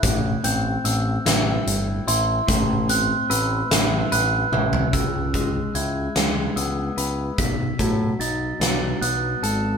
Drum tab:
HH |x-x-x-x-x-x-|x-x-x-x-x---|x-x-x-x-x-x-|x-x-x-x-x-x-|
SD |------o-----|------o-----|------o-----|------o-----|
T1 |------------|----------o-|------------|------------|
FT |------------|-----------o|------------|------------|
BD |o-----------|o-----------|o-o---------|o-o---------|